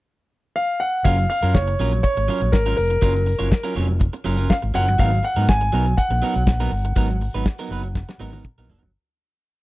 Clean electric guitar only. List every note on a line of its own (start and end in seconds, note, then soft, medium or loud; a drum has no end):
1.05 1.25 F#3 medium
1.05 1.18 C#4 medium
1.05 1.17 F4 medium
1.05 1.17 A#4 loud
1.18 muted clean electric guitar stroke medium
1.30 muted clean electric guitar stroke soft
1.43 1.54 F#3 medium
1.43 1.55 C#4 medium
1.43 1.55 F4 medium
1.43 1.55 A#4 medium
1.55 muted clean electric guitar stroke soft
1.68 muted clean electric guitar stroke soft
1.80 1.99 F#3 medium
1.80 1.93 C#4 medium
1.80 1.93 F4 medium
1.80 1.92 A#4 medium
1.93 muted clean electric guitar stroke soft
2.17 muted clean electric guitar stroke soft
2.28 2.48 F#3 medium
2.28 2.42 C#4 medium
2.28 2.41 F4 medium
2.28 2.41 A#4 medium
2.42 muted clean electric guitar stroke soft
2.53 muted clean electric guitar stroke soft
2.66 2.76 F#3 medium
2.66 2.77 C#4 medium
2.66 2.77 F4 medium
2.66 2.77 A#4 medium
2.77 muted clean electric guitar stroke soft
2.90 muted clean electric guitar stroke medium
3.02 3.22 F#3 medium
3.02 3.15 C#4 medium
3.02 3.14 F4 loud
3.02 3.13 A#4 loud
3.15 muted clean electric guitar stroke soft
3.26 muted clean electric guitar stroke soft
3.39 3.49 F#3 medium
3.39 3.49 C#4 medium
3.39 3.50 F4 medium
3.39 3.51 C#5 medium
3.50 muted clean electric guitar stroke soft
3.64 3.74 F#3 medium
3.64 3.74 C#4 medium
3.64 3.75 F4 medium
3.64 3.76 A#4 medium
3.75 3.91 F#3 medium
3.75 3.88 C#4 medium
3.75 3.87 F4 medium
3.75 3.88 C#5 medium
3.88 muted clean electric guitar stroke medium
4.00 muted clean electric guitar stroke soft
4.13 muted clean electric guitar stroke medium
4.24 4.37 F#3 medium
4.24 4.37 C#4 medium
4.24 4.36 F4 medium
4.24 4.36 A#4 loud
4.37 4.53 F#3 medium
4.37 4.53 C#4 medium
4.37 4.53 F4 medium
4.37 4.53 A#4 medium
4.62 muted clean electric guitar stroke medium
4.74 4.94 F#3 medium
4.74 4.87 C#4 medium
4.74 4.87 F4 medium
4.74 4.86 A#4 loud
4.88 muted clean electric guitar stroke soft
4.98 5.19 F#3 medium
4.98 5.12 B3 medium
4.98 5.11 D#4 medium
4.98 5.10 A#4 medium
5.11 muted clean electric guitar stroke soft
5.23 muted clean electric guitar stroke soft
5.36 5.47 F#3 medium
5.36 5.47 B3 medium
5.36 5.47 D#4 medium
5.36 5.48 A#4 medium
5.61 muted clean electric guitar stroke soft
5.73 5.93 F#3 medium
5.73 5.86 B3 medium
5.73 5.86 D#4 medium
5.73 5.85 A#4 medium
5.86 muted clean electric guitar stroke medium
6.11 muted clean electric guitar stroke soft
6.22 6.42 F#3 medium
6.22 6.35 B3 medium
6.22 6.35 D#4 medium
6.22 6.34 A#4 medium
6.35 muted clean electric guitar stroke soft
6.47 muted clean electric guitar stroke soft
6.60 6.70 F#3 medium
6.60 6.71 B3 medium
6.60 6.71 D#4 medium
6.60 6.72 A#4 medium
6.72 muted clean electric guitar stroke soft
6.85 muted clean electric guitar stroke soft
6.96 7.16 F#3 medium
6.96 7.09 B3 medium
6.96 7.09 D#4 medium
6.96 7.08 A#4 medium
7.09 muted clean electric guitar stroke soft
7.21 muted clean electric guitar stroke soft
7.34 7.45 F#3 medium
7.34 7.46 B3 medium
7.34 7.46 D#4 medium
7.34 7.47 B4 medium
7.46 muted clean electric guitar stroke soft
7.59 7.69 F#3 medium
7.59 7.70 B3 medium
7.59 7.70 D#4 medium
7.59 7.72 A#4 medium
7.70 7.87 F#3 medium
7.70 7.83 B3 medium
7.70 7.83 D#4 medium
7.70 7.83 B4 medium
7.84 muted clean electric guitar stroke medium
7.96 muted clean electric guitar stroke soft
8.09 muted clean electric guitar stroke soft
8.20 8.33 F#3 medium
8.20 8.32 B3 medium
8.20 8.32 D#4 medium
8.20 8.31 A#4 medium
8.32 8.43 F#3 soft
8.32 8.44 B3 medium
8.32 8.44 D#4 medium
8.32 8.45 A#4 medium
8.58 8.68 F#3 medium
8.58 8.69 B3 medium
8.58 8.70 D#4 medium
8.58 8.70 A#4 medium
8.70 8.90 F#3 medium
8.70 8.83 B3 medium
8.70 8.82 D#4 medium
8.70 8.82 A#4 medium
8.83 muted clean electric guitar stroke medium